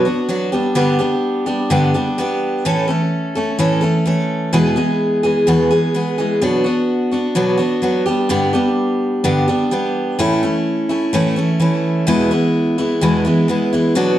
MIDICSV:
0, 0, Header, 1, 2, 480
1, 0, Start_track
1, 0, Key_signature, 3, "major"
1, 0, Tempo, 471328
1, 777, Time_signature, 4, 2, 24, 8
1, 14448, End_track
2, 0, Start_track
2, 0, Title_t, "Steel-string acoustic guitar"
2, 0, Program_c, 0, 25
2, 52, Note_on_c, 0, 66, 52
2, 64, Note_on_c, 0, 62, 47
2, 74, Note_on_c, 0, 59, 40
2, 285, Note_off_c, 0, 59, 0
2, 289, Note_off_c, 0, 62, 0
2, 291, Note_on_c, 0, 54, 63
2, 295, Note_off_c, 0, 66, 0
2, 297, Note_on_c, 0, 59, 61
2, 301, Note_on_c, 0, 62, 58
2, 307, Note_on_c, 0, 66, 67
2, 526, Note_off_c, 0, 62, 0
2, 527, Note_off_c, 0, 66, 0
2, 528, Note_off_c, 0, 59, 0
2, 531, Note_on_c, 0, 67, 56
2, 534, Note_off_c, 0, 54, 0
2, 538, Note_on_c, 0, 62, 47
2, 540, Note_on_c, 0, 59, 41
2, 552, Note_on_c, 0, 55, 43
2, 754, Note_off_c, 0, 55, 0
2, 759, Note_off_c, 0, 62, 0
2, 760, Note_off_c, 0, 59, 0
2, 764, Note_on_c, 0, 43, 69
2, 765, Note_on_c, 0, 50, 73
2, 767, Note_on_c, 0, 55, 78
2, 769, Note_off_c, 0, 67, 0
2, 771, Note_on_c, 0, 62, 81
2, 772, Note_on_c, 0, 59, 83
2, 781, Note_on_c, 0, 67, 81
2, 993, Note_off_c, 0, 67, 0
2, 1004, Note_off_c, 0, 62, 0
2, 1005, Note_on_c, 0, 67, 53
2, 1009, Note_off_c, 0, 59, 0
2, 1011, Note_off_c, 0, 43, 0
2, 1011, Note_off_c, 0, 50, 0
2, 1012, Note_off_c, 0, 55, 0
2, 1017, Note_on_c, 0, 62, 53
2, 1021, Note_on_c, 0, 59, 47
2, 1030, Note_on_c, 0, 55, 42
2, 1475, Note_off_c, 0, 67, 0
2, 1482, Note_off_c, 0, 62, 0
2, 1487, Note_on_c, 0, 67, 52
2, 1488, Note_off_c, 0, 59, 0
2, 1492, Note_off_c, 0, 55, 0
2, 1494, Note_on_c, 0, 62, 49
2, 1500, Note_on_c, 0, 59, 38
2, 1504, Note_on_c, 0, 55, 41
2, 1728, Note_off_c, 0, 55, 0
2, 1731, Note_off_c, 0, 62, 0
2, 1731, Note_on_c, 0, 43, 66
2, 1732, Note_off_c, 0, 59, 0
2, 1732, Note_off_c, 0, 67, 0
2, 1734, Note_on_c, 0, 50, 84
2, 1741, Note_on_c, 0, 55, 78
2, 1743, Note_on_c, 0, 62, 85
2, 1744, Note_on_c, 0, 59, 71
2, 1747, Note_on_c, 0, 67, 84
2, 1965, Note_off_c, 0, 67, 0
2, 1971, Note_off_c, 0, 62, 0
2, 1974, Note_off_c, 0, 43, 0
2, 1975, Note_off_c, 0, 50, 0
2, 1976, Note_off_c, 0, 59, 0
2, 1978, Note_on_c, 0, 67, 54
2, 1979, Note_off_c, 0, 55, 0
2, 1983, Note_on_c, 0, 62, 50
2, 1988, Note_on_c, 0, 59, 45
2, 1994, Note_on_c, 0, 55, 43
2, 2208, Note_off_c, 0, 55, 0
2, 2213, Note_off_c, 0, 59, 0
2, 2217, Note_off_c, 0, 67, 0
2, 2220, Note_off_c, 0, 62, 0
2, 2220, Note_on_c, 0, 55, 60
2, 2225, Note_on_c, 0, 59, 66
2, 2234, Note_on_c, 0, 62, 61
2, 2243, Note_on_c, 0, 67, 68
2, 2698, Note_off_c, 0, 55, 0
2, 2699, Note_on_c, 0, 45, 69
2, 2701, Note_off_c, 0, 59, 0
2, 2704, Note_on_c, 0, 52, 74
2, 2705, Note_off_c, 0, 62, 0
2, 2706, Note_on_c, 0, 57, 78
2, 2707, Note_off_c, 0, 67, 0
2, 2710, Note_on_c, 0, 61, 85
2, 2711, Note_on_c, 0, 69, 95
2, 2917, Note_off_c, 0, 69, 0
2, 2929, Note_off_c, 0, 61, 0
2, 2929, Note_on_c, 0, 69, 57
2, 2938, Note_off_c, 0, 45, 0
2, 2940, Note_off_c, 0, 52, 0
2, 2941, Note_off_c, 0, 57, 0
2, 2941, Note_on_c, 0, 61, 43
2, 2958, Note_on_c, 0, 57, 41
2, 3403, Note_off_c, 0, 69, 0
2, 3416, Note_off_c, 0, 61, 0
2, 3416, Note_on_c, 0, 69, 57
2, 3424, Note_off_c, 0, 57, 0
2, 3428, Note_on_c, 0, 61, 46
2, 3436, Note_on_c, 0, 57, 39
2, 3646, Note_off_c, 0, 57, 0
2, 3651, Note_off_c, 0, 61, 0
2, 3652, Note_on_c, 0, 45, 80
2, 3653, Note_off_c, 0, 69, 0
2, 3658, Note_on_c, 0, 52, 75
2, 3658, Note_on_c, 0, 57, 75
2, 3663, Note_on_c, 0, 61, 90
2, 3665, Note_on_c, 0, 69, 86
2, 3866, Note_off_c, 0, 69, 0
2, 3879, Note_on_c, 0, 69, 48
2, 3883, Note_off_c, 0, 61, 0
2, 3893, Note_off_c, 0, 57, 0
2, 3894, Note_off_c, 0, 45, 0
2, 3895, Note_on_c, 0, 61, 42
2, 3897, Note_off_c, 0, 52, 0
2, 3905, Note_on_c, 0, 57, 45
2, 4128, Note_off_c, 0, 57, 0
2, 4128, Note_off_c, 0, 69, 0
2, 4130, Note_on_c, 0, 52, 57
2, 4136, Note_off_c, 0, 61, 0
2, 4141, Note_on_c, 0, 57, 54
2, 4146, Note_on_c, 0, 61, 56
2, 4149, Note_on_c, 0, 69, 66
2, 4602, Note_off_c, 0, 52, 0
2, 4609, Note_on_c, 0, 40, 79
2, 4611, Note_on_c, 0, 47, 75
2, 4614, Note_off_c, 0, 61, 0
2, 4615, Note_off_c, 0, 57, 0
2, 4615, Note_on_c, 0, 52, 82
2, 4618, Note_off_c, 0, 69, 0
2, 4618, Note_on_c, 0, 59, 76
2, 4619, Note_on_c, 0, 56, 79
2, 4622, Note_on_c, 0, 68, 89
2, 4834, Note_off_c, 0, 68, 0
2, 4844, Note_off_c, 0, 59, 0
2, 4846, Note_on_c, 0, 68, 52
2, 4850, Note_off_c, 0, 56, 0
2, 4853, Note_off_c, 0, 40, 0
2, 4854, Note_off_c, 0, 47, 0
2, 4856, Note_off_c, 0, 52, 0
2, 4857, Note_on_c, 0, 59, 52
2, 4862, Note_on_c, 0, 56, 46
2, 4867, Note_on_c, 0, 52, 41
2, 5316, Note_off_c, 0, 68, 0
2, 5329, Note_on_c, 0, 68, 53
2, 5331, Note_off_c, 0, 56, 0
2, 5336, Note_off_c, 0, 59, 0
2, 5338, Note_off_c, 0, 52, 0
2, 5340, Note_on_c, 0, 59, 46
2, 5343, Note_on_c, 0, 56, 43
2, 5351, Note_on_c, 0, 52, 42
2, 5568, Note_off_c, 0, 52, 0
2, 5568, Note_off_c, 0, 56, 0
2, 5568, Note_on_c, 0, 40, 75
2, 5570, Note_off_c, 0, 59, 0
2, 5573, Note_off_c, 0, 68, 0
2, 5573, Note_on_c, 0, 47, 82
2, 5580, Note_on_c, 0, 52, 78
2, 5580, Note_on_c, 0, 56, 73
2, 5582, Note_on_c, 0, 59, 89
2, 5586, Note_on_c, 0, 68, 81
2, 5798, Note_off_c, 0, 68, 0
2, 5807, Note_off_c, 0, 59, 0
2, 5811, Note_on_c, 0, 68, 53
2, 5813, Note_off_c, 0, 40, 0
2, 5814, Note_off_c, 0, 56, 0
2, 5816, Note_off_c, 0, 47, 0
2, 5819, Note_off_c, 0, 52, 0
2, 5819, Note_on_c, 0, 59, 50
2, 5826, Note_on_c, 0, 56, 45
2, 5834, Note_on_c, 0, 52, 42
2, 6041, Note_off_c, 0, 52, 0
2, 6045, Note_off_c, 0, 56, 0
2, 6053, Note_on_c, 0, 52, 53
2, 6055, Note_off_c, 0, 59, 0
2, 6055, Note_off_c, 0, 68, 0
2, 6057, Note_on_c, 0, 56, 57
2, 6067, Note_on_c, 0, 59, 60
2, 6072, Note_on_c, 0, 68, 60
2, 6282, Note_off_c, 0, 68, 0
2, 6288, Note_off_c, 0, 59, 0
2, 6294, Note_on_c, 0, 68, 49
2, 6296, Note_off_c, 0, 52, 0
2, 6298, Note_off_c, 0, 56, 0
2, 6300, Note_on_c, 0, 59, 47
2, 6311, Note_on_c, 0, 56, 46
2, 6317, Note_on_c, 0, 52, 39
2, 6524, Note_off_c, 0, 59, 0
2, 6532, Note_off_c, 0, 52, 0
2, 6533, Note_off_c, 0, 56, 0
2, 6533, Note_on_c, 0, 47, 76
2, 6536, Note_off_c, 0, 68, 0
2, 6536, Note_on_c, 0, 54, 71
2, 6537, Note_on_c, 0, 59, 77
2, 6544, Note_on_c, 0, 62, 82
2, 6547, Note_on_c, 0, 66, 75
2, 6751, Note_off_c, 0, 66, 0
2, 6763, Note_on_c, 0, 66, 48
2, 6768, Note_off_c, 0, 62, 0
2, 6771, Note_off_c, 0, 59, 0
2, 6776, Note_off_c, 0, 47, 0
2, 6778, Note_off_c, 0, 54, 0
2, 6781, Note_on_c, 0, 62, 43
2, 6783, Note_on_c, 0, 59, 42
2, 7234, Note_off_c, 0, 66, 0
2, 7246, Note_on_c, 0, 66, 44
2, 7251, Note_off_c, 0, 62, 0
2, 7255, Note_on_c, 0, 62, 42
2, 7265, Note_off_c, 0, 59, 0
2, 7269, Note_on_c, 0, 59, 39
2, 7479, Note_off_c, 0, 59, 0
2, 7485, Note_off_c, 0, 62, 0
2, 7486, Note_on_c, 0, 47, 73
2, 7490, Note_off_c, 0, 66, 0
2, 7491, Note_on_c, 0, 59, 70
2, 7492, Note_on_c, 0, 54, 76
2, 7497, Note_on_c, 0, 62, 78
2, 7503, Note_on_c, 0, 66, 81
2, 7702, Note_off_c, 0, 66, 0
2, 7714, Note_on_c, 0, 66, 52
2, 7716, Note_off_c, 0, 62, 0
2, 7724, Note_off_c, 0, 59, 0
2, 7728, Note_on_c, 0, 62, 46
2, 7733, Note_off_c, 0, 47, 0
2, 7736, Note_off_c, 0, 54, 0
2, 7736, Note_on_c, 0, 59, 45
2, 7958, Note_off_c, 0, 59, 0
2, 7962, Note_off_c, 0, 62, 0
2, 7962, Note_on_c, 0, 54, 53
2, 7967, Note_off_c, 0, 66, 0
2, 7970, Note_on_c, 0, 59, 51
2, 7974, Note_on_c, 0, 62, 63
2, 7981, Note_on_c, 0, 66, 75
2, 8201, Note_off_c, 0, 66, 0
2, 8205, Note_off_c, 0, 62, 0
2, 8205, Note_on_c, 0, 67, 52
2, 8211, Note_off_c, 0, 54, 0
2, 8215, Note_off_c, 0, 59, 0
2, 8217, Note_on_c, 0, 62, 49
2, 8226, Note_on_c, 0, 59, 41
2, 8230, Note_on_c, 0, 55, 41
2, 8437, Note_off_c, 0, 55, 0
2, 8441, Note_off_c, 0, 59, 0
2, 8441, Note_off_c, 0, 62, 0
2, 8444, Note_on_c, 0, 43, 79
2, 8447, Note_off_c, 0, 67, 0
2, 8448, Note_on_c, 0, 50, 70
2, 8449, Note_on_c, 0, 55, 74
2, 8453, Note_on_c, 0, 59, 90
2, 8453, Note_on_c, 0, 62, 79
2, 8459, Note_on_c, 0, 67, 85
2, 8674, Note_off_c, 0, 67, 0
2, 8682, Note_off_c, 0, 62, 0
2, 8686, Note_on_c, 0, 67, 47
2, 8692, Note_off_c, 0, 43, 0
2, 8692, Note_off_c, 0, 59, 0
2, 8694, Note_off_c, 0, 50, 0
2, 8694, Note_on_c, 0, 62, 51
2, 8695, Note_off_c, 0, 55, 0
2, 8704, Note_on_c, 0, 59, 50
2, 8706, Note_on_c, 0, 55, 47
2, 9403, Note_off_c, 0, 55, 0
2, 9403, Note_off_c, 0, 59, 0
2, 9409, Note_off_c, 0, 62, 0
2, 9409, Note_on_c, 0, 43, 80
2, 9409, Note_on_c, 0, 50, 88
2, 9411, Note_off_c, 0, 67, 0
2, 9415, Note_on_c, 0, 55, 74
2, 9416, Note_on_c, 0, 59, 80
2, 9422, Note_on_c, 0, 62, 83
2, 9423, Note_on_c, 0, 67, 75
2, 9639, Note_off_c, 0, 67, 0
2, 9647, Note_off_c, 0, 62, 0
2, 9651, Note_on_c, 0, 67, 56
2, 9655, Note_off_c, 0, 43, 0
2, 9655, Note_off_c, 0, 50, 0
2, 9655, Note_off_c, 0, 59, 0
2, 9658, Note_off_c, 0, 55, 0
2, 9659, Note_on_c, 0, 62, 42
2, 9668, Note_on_c, 0, 59, 53
2, 9673, Note_on_c, 0, 55, 39
2, 9879, Note_off_c, 0, 55, 0
2, 9887, Note_off_c, 0, 59, 0
2, 9892, Note_on_c, 0, 55, 59
2, 9894, Note_off_c, 0, 62, 0
2, 9896, Note_off_c, 0, 67, 0
2, 9899, Note_on_c, 0, 59, 59
2, 9906, Note_on_c, 0, 62, 65
2, 9911, Note_on_c, 0, 67, 55
2, 10372, Note_off_c, 0, 55, 0
2, 10373, Note_on_c, 0, 45, 75
2, 10376, Note_off_c, 0, 59, 0
2, 10376, Note_on_c, 0, 52, 73
2, 10380, Note_on_c, 0, 57, 89
2, 10383, Note_off_c, 0, 62, 0
2, 10384, Note_off_c, 0, 67, 0
2, 10387, Note_on_c, 0, 61, 76
2, 10388, Note_on_c, 0, 64, 87
2, 10607, Note_off_c, 0, 64, 0
2, 10616, Note_off_c, 0, 61, 0
2, 10617, Note_off_c, 0, 45, 0
2, 10619, Note_off_c, 0, 52, 0
2, 10619, Note_on_c, 0, 64, 53
2, 10621, Note_off_c, 0, 57, 0
2, 10629, Note_on_c, 0, 61, 48
2, 10640, Note_on_c, 0, 57, 43
2, 11089, Note_off_c, 0, 64, 0
2, 11091, Note_off_c, 0, 61, 0
2, 11093, Note_on_c, 0, 64, 54
2, 11099, Note_off_c, 0, 57, 0
2, 11103, Note_on_c, 0, 61, 41
2, 11111, Note_on_c, 0, 57, 43
2, 11330, Note_off_c, 0, 57, 0
2, 11334, Note_on_c, 0, 45, 76
2, 11335, Note_off_c, 0, 61, 0
2, 11337, Note_off_c, 0, 64, 0
2, 11342, Note_on_c, 0, 57, 82
2, 11343, Note_on_c, 0, 52, 69
2, 11347, Note_on_c, 0, 61, 78
2, 11354, Note_on_c, 0, 64, 88
2, 11558, Note_off_c, 0, 64, 0
2, 11569, Note_off_c, 0, 61, 0
2, 11570, Note_on_c, 0, 64, 53
2, 11577, Note_off_c, 0, 45, 0
2, 11581, Note_off_c, 0, 57, 0
2, 11581, Note_on_c, 0, 61, 45
2, 11582, Note_off_c, 0, 52, 0
2, 11596, Note_on_c, 0, 57, 49
2, 11805, Note_off_c, 0, 57, 0
2, 11809, Note_on_c, 0, 52, 57
2, 11815, Note_off_c, 0, 61, 0
2, 11815, Note_off_c, 0, 64, 0
2, 11817, Note_on_c, 0, 57, 64
2, 11827, Note_on_c, 0, 61, 60
2, 11833, Note_on_c, 0, 64, 68
2, 12286, Note_off_c, 0, 52, 0
2, 12289, Note_on_c, 0, 40, 86
2, 12291, Note_off_c, 0, 64, 0
2, 12293, Note_on_c, 0, 47, 70
2, 12298, Note_off_c, 0, 57, 0
2, 12298, Note_on_c, 0, 52, 79
2, 12299, Note_off_c, 0, 61, 0
2, 12302, Note_on_c, 0, 56, 77
2, 12303, Note_on_c, 0, 59, 91
2, 12303, Note_on_c, 0, 64, 84
2, 12522, Note_off_c, 0, 64, 0
2, 12527, Note_off_c, 0, 59, 0
2, 12534, Note_on_c, 0, 64, 53
2, 12535, Note_off_c, 0, 40, 0
2, 12537, Note_off_c, 0, 47, 0
2, 12537, Note_off_c, 0, 56, 0
2, 12539, Note_off_c, 0, 52, 0
2, 12539, Note_on_c, 0, 59, 50
2, 12549, Note_on_c, 0, 56, 44
2, 12555, Note_on_c, 0, 52, 36
2, 13003, Note_off_c, 0, 64, 0
2, 13008, Note_off_c, 0, 59, 0
2, 13015, Note_off_c, 0, 56, 0
2, 13015, Note_on_c, 0, 64, 51
2, 13020, Note_on_c, 0, 59, 52
2, 13027, Note_off_c, 0, 52, 0
2, 13028, Note_on_c, 0, 56, 39
2, 13038, Note_on_c, 0, 52, 39
2, 13254, Note_off_c, 0, 56, 0
2, 13254, Note_on_c, 0, 40, 83
2, 13255, Note_off_c, 0, 52, 0
2, 13256, Note_off_c, 0, 59, 0
2, 13257, Note_off_c, 0, 64, 0
2, 13260, Note_on_c, 0, 47, 72
2, 13266, Note_on_c, 0, 56, 78
2, 13267, Note_on_c, 0, 52, 75
2, 13268, Note_on_c, 0, 64, 84
2, 13269, Note_on_c, 0, 59, 73
2, 13478, Note_off_c, 0, 64, 0
2, 13490, Note_on_c, 0, 64, 56
2, 13491, Note_off_c, 0, 59, 0
2, 13496, Note_off_c, 0, 40, 0
2, 13498, Note_off_c, 0, 56, 0
2, 13499, Note_off_c, 0, 47, 0
2, 13503, Note_off_c, 0, 52, 0
2, 13503, Note_on_c, 0, 59, 44
2, 13510, Note_on_c, 0, 56, 46
2, 13515, Note_on_c, 0, 52, 42
2, 13716, Note_off_c, 0, 52, 0
2, 13728, Note_off_c, 0, 56, 0
2, 13729, Note_on_c, 0, 52, 52
2, 13731, Note_off_c, 0, 59, 0
2, 13734, Note_off_c, 0, 64, 0
2, 13740, Note_on_c, 0, 56, 57
2, 13743, Note_on_c, 0, 59, 58
2, 13752, Note_on_c, 0, 64, 65
2, 13966, Note_off_c, 0, 64, 0
2, 13973, Note_off_c, 0, 52, 0
2, 13978, Note_off_c, 0, 59, 0
2, 13979, Note_off_c, 0, 56, 0
2, 13979, Note_on_c, 0, 64, 51
2, 13990, Note_on_c, 0, 59, 47
2, 13994, Note_on_c, 0, 56, 44
2, 14003, Note_on_c, 0, 52, 36
2, 14204, Note_off_c, 0, 59, 0
2, 14209, Note_off_c, 0, 52, 0
2, 14209, Note_on_c, 0, 47, 78
2, 14212, Note_off_c, 0, 56, 0
2, 14213, Note_on_c, 0, 54, 72
2, 14216, Note_on_c, 0, 59, 73
2, 14218, Note_off_c, 0, 64, 0
2, 14221, Note_on_c, 0, 62, 92
2, 14224, Note_on_c, 0, 66, 88
2, 14434, Note_off_c, 0, 66, 0
2, 14448, Note_off_c, 0, 47, 0
2, 14448, Note_off_c, 0, 54, 0
2, 14448, Note_off_c, 0, 59, 0
2, 14448, Note_off_c, 0, 62, 0
2, 14448, End_track
0, 0, End_of_file